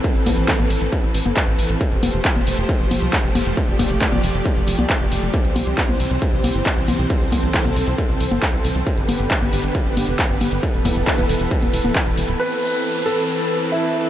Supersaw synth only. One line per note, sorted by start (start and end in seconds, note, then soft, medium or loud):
0.00 1.77 E3 medium
0.00 1.77 C4 medium
0.00 1.77 A4 medium
0.00 1.77 B4 medium
1.81 5.30 F3 medium
1.81 5.30 A3 medium
1.81 7.06 G4 medium
1.81 3.55 C5 medium
3.57 5.32 D5 loud
5.34 8.83 E3 medium
5.34 8.83 C4 medium
5.34 8.83 C5 medium
7.10 8.85 A4 medium
8.87 10.61 D3 medium
8.87 12.36 B3 medium
8.87 10.61 G4 medium
8.87 10.61 B4 medium
10.63 12.38 E3 medium
10.63 12.38 A4 medium
10.63 12.38 B4 loud
12.39 14.10 E3 medium
12.39 14.10 C4 medium
12.39 14.10 A4 medium
12.39 14.10 B4 medium